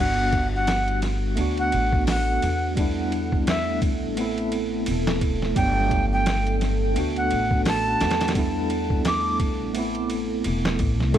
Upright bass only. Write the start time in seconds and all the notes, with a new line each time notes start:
Already playing: G1
1.38 D2
1.73 A1
2.43 E2
4.03 A1
4.88 E1
5.57 G1
6.97 D2
7.32 A1
8.01 E2
9.61 A1
10.46 E1
10.80 A1
11.01 C2
11.15 G1